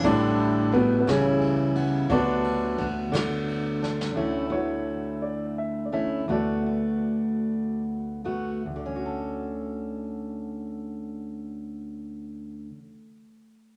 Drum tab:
RD |x-x-x-x-x-x-|x-x-x-x-x---|------------|------------|
SD |------o-----|------o---oo|------------|------------|
BD |o---o-------|o---o-------|------------|------------|

RD |------------|------------|
SD |------------|------------|
BD |------------|------------|